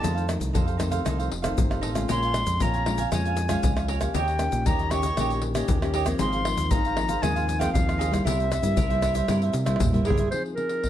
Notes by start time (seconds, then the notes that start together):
Already playing: D#3 A3 C4 A5
0.01 F2 D#4 A4 C5 F5, pandeiro, shaker, surdo
0.15 A4 C5 F5, pandeiro, shaker
0.27 D#3 A3 C4, muted cavaquinho stroke, pandeiro, tamborim, shaker
0.40 C2, pandeiro, shaker, surdo
0.53 F2 C3 D#4 A4 C5 F5, pandeiro, shaker, surdo
0.66 A4 C5 F5, pandeiro, shaker
0.77 D#3 A3 C4 D#4 A4 C5 F5, pandeiro, tamborim, shaker, surdo
0.91 A4 C5 F5, pandeiro, shaker
1.05 C2 F2 D#3 A3 C4 D#4 A4 C5 F5, pandeiro, tamborim, shaker, surdo
1.19 A4 C5 F5, pandeiro, shaker
1.30 F1, muted cavaquinho stroke, pandeiro
1.42 D#3 A3 C4 A4 C5 F5, pandeiro, tamborim, shaker, surdo
1.57 G1 C3, pandeiro, shaker, surdo
1.70 A4 C5 F5, pandeiro, tamborim, shaker
1.81 A1 D#4 A4 C5 F5, pandeiro
1.94 G#3 C#4 F4 A4 C5 F5, pandeiro, tamborim, shaker, surdo
2.08 A#1 A#2 A#4 C#5 F5 G#5 C6, pandeiro, shaker, surdo
2.22 C#5 F5 G#5, pandeiro, shaker
2.34 G#3 C#4 F4, muted cavaquinho stroke, pandeiro, tamborim, shaker, surdo
2.46 F2, pandeiro, shaker, surdo
2.60 A#1 F2 A#4 C#5 F5 G#5 A#5, pandeiro, shaker, surdo
2.74 C#5 F5 G#5, pandeiro, shaker
2.86 G#3 C#4 F4 A#4 C#5 F5 G#5, pandeiro, tamborim, surdo
2.98 C#5 F5 G#5, pandeiro, shaker
3.12 F2 A#2 G#3 C#4 F4 A#4 C#5 F5 G#5, pandeiro, tamborim, shaker, surdo
3.25 C#5 F5 G#5, pandeiro, shaker
3.37 muted cavaquinho stroke, pandeiro, shaker
3.49 G#3 C#4 F4 C#5 F5 G#5, pandeiro, tamborim, shaker, surdo
3.63 C#2 F2, pandeiro, shaker, surdo
3.77 C#5 F5 G#5, pandeiro, tamborim, shaker
3.88 A#4 C#5 F5 G#5, pandeiro
4.00 A#3 C#4 G4 C#5 F5 G#5, pandeiro, tamborim, shaker, surdo
4.14 D#2 D#3 D#4 G4 C#5 D#5 G5, pandeiro, shaker, surdo
4.28 G4 C#5 D#5, pandeiro, shaker
4.39 A#3 C#4 G4, muted cavaquinho stroke, pandeiro, tamborim, shaker
4.52 A#1, pandeiro, shaker, surdo
4.66 D#2 A#2 D#4 G4 C#5 D#5 A#5, pandeiro, shaker, surdo
4.79 G4 C#5 D#5, pandeiro, shaker
4.91 A#3 C#4 D#4 G4 C#5 C#6, pandeiro, tamborim, shaker, surdo
4.95 D#5
5.03 C#5 D#5, pandeiro, shaker
5.07 G4
5.17 A#1 D#3 A#3 C#4 D#4 G4 C#5, pandeiro, tamborim, shaker, surdo
5.22 D#5
5.30 C#5 D#5, pandeiro, shaker
5.35 G4
5.42 muted cavaquinho stroke, pandeiro
5.54 A#3 C#4 G4 C#5 D#5, pandeiro, tamborim, shaker, surdo
5.68 D#2 A#2, pandeiro, shaker, surdo
5.82 A#3 C#4 G4 C#5 D#5, pandeiro, tamborim, shaker
5.94 D#4 G4 C#5 D#5, pandeiro
6.06 F3 A#3 C4 G4 C#5, pandeiro, tamborim, shaker, surdo
6.19 G#1 G#2 D#4 G#4 C5 F5 C6, pandeiro, shaker, surdo
6.33 G#4 C5 F5, pandeiro, shaker
6.44 F3 A#3 C4, muted cavaquinho stroke, pandeiro, tamborim
6.57 D#2, pandeiro, shaker, surdo
6.70 G#1 D#3 D#4 G#4 C5 F5 A#5, pandeiro, shaker, surdo
6.85 G#4 C5 F5, pandeiro, shaker
6.96 F3 A#3 C4 D#4 G#4 C5 F5, pandeiro, tamborim, surdo
7.09 G#4 C5 F5, pandeiro, shaker
7.22 D#2 G#2 F3 A#3 C4 D#4 G#4 C5 F5 G#5, pandeiro, tamborim, shaker, surdo
7.35 G#4 C5 F5, pandeiro, shaker
7.48 muted cavaquinho stroke, pandeiro, shaker
7.59 F3 A#3 C4 G#4 C5 F5 G5, pandeiro, tamborim, shaker, surdo
7.73 D#2 D#3 F5, pandeiro, shaker, surdo
7.87 G#4 C5 F5, pandeiro, tamborim, shaker
7.98 D#4 G#4 C5 F5, pandeiro, shaker
8.11 G3 A#3 E4 G#4 C5 F5, pandeiro, tamborim, shaker, surdo
8.25 C2 C3 E4 A#4 C5 E5, pandeiro, shaker, surdo
8.39 A#4 C5 E5, pandeiro, shaker
8.52 pandeiro, tamborim, shaker, surdo
8.62 G2 G3 A#3 E4, pandeiro, shaker, surdo
8.76 C2 G2 E4 A#4 C5 E5, pandeiro, shaker, surdo
8.90 G3 A#3 E4 A#4 C5 E5, pandeiro, shaker
9.02 E4 A#4 C5 E5, pandeiro, tamborim, shaker, surdo
9.15 A#4 C5 E5, pandeiro, shaker
9.28 G2 C3 G3 A#3 E4 A#4 C5 E5, pandeiro, tamborim, shaker, surdo
9.42 A#4 C5 E5, pandeiro, shaker
9.53 C3, muted cavaquinho stroke, pandeiro, shaker
9.66 G3 A#3 E4 A#4 C5 E5, pandeiro, tamborim, shaker, surdo
9.76 G2 A#2, tamborim
9.80 pandeiro, shaker, surdo
9.85 surdo
9.93 G3 A#3 E4 A#4 C5 E5, surdo, pandeiro, shaker
10.02 G2 E4 G#4, surdo, pandeiro
10.06 A#4 C5 E5
10.10 surdo
10.18 A#4 C5 E5, pandeiro, shaker, surdo
10.27 C5, surdo
10.32 F3 C4 D#4 G#4, pandeiro, surdo
10.46 pandeiro
10.55 C4 D#4 G#4 A#4, pandeiro
10.69 pandeiro
10.83 C3, pandeiro, surdo